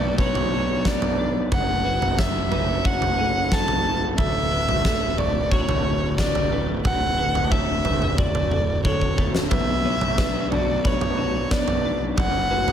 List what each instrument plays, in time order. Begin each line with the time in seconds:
Already playing: fingered electric bass B1, clean electric guitar B2 B3 D4 F#4, ambient pad A3 B3 D4, felt piano D4, violin D5
0.18 clean electric guitar B4, violin C#5, kick
0.35 floor tom
0.51 felt piano D4, clean electric guitar F#4
0.85 clean electric guitar B3, violin D5, kick, snare
1.02 floor tom
1.18 clean electric guitar D4, felt piano B4
1.50 fingered electric bass F#1, clean electric guitar F#2, ambient pad F#4, violin F#5, kick, floor tom
1.85 clean electric guitar F#3, felt piano B4
2.02 floor tom
2.18 clean electric guitar A3, felt piano C#5, violin E5, kick, snare
2.52 clean electric guitar C#4, felt piano B4, floor tom
2.85 clean electric guitar F#4, violin F#5, kick
3.02 floor tom
3.18 clean electric guitar C#4, felt piano A4
3.51 clean electric guitar F#3, felt piano A4, violin A5, kick, snare
3.68 floor tom
3.84 clean electric guitar A3
4.17 fingered electric bass D1, clean electric guitar D2, ambient pad D3, felt piano A4, violin E5, kick, floor tom
4.51 clean electric guitar D3, felt piano B4
4.69 floor tom
4.85 clean electric guitar A3, felt piano A4, kick, snare
5.18 violin D5, felt piano C#6, floor tom
5.51 clean electric guitar F#4, violin C#5, kick
5.69 floor tom
5.86 felt piano C#6
6.18 clean electric guitar D3, violin D5, kick, snare
6.35 floor tom
6.52 clean electric guitar A3, felt piano B4
6.85 fingered electric bass D1, clean electric guitar D2, violin F#5, kick, floor tom
7.18 clean electric guitar D3, felt piano B4
7.35 floor tom
7.52 clean electric guitar A3, felt piano C#5, violin E5, kick
7.85 felt piano B4, floor tom
8.02 mid tom
8.18 clean electric guitar F#4, violin D5, kick, mid tom
8.35 floor tom
8.51 felt piano A4, mid tom
8.85 clean electric guitar D3, felt piano A4, violin C#5, kick
9.01 kick
9.18 clean electric guitar A3, kick
9.35 snare
9.51 fingered electric bass B1, clean electric guitar B2, ambient pad A3 B3 D4, felt piano B4, violin E5, kick, floor tom
9.85 clean electric guitar B3, felt piano C#5
10.01 floor tom
10.18 clean electric guitar D4, felt piano B4, kick, snare
10.51 felt piano D4, clean electric guitar F#4, violin D5, floor tom
10.84 clean electric guitar B4, violin C#5, kick
11.01 floor tom
11.17 felt piano D4, clean electric guitar F#4
11.51 clean electric guitar B3, violin D5, kick, snare
11.68 floor tom
11.84 clean electric guitar D4, felt piano B4
12.17 fingered electric bass F#1, clean electric guitar F#2, ambient pad C#4 F#4, violin F#5, kick, floor tom
12.51 clean electric guitar F#3, felt piano B4
12.68 floor tom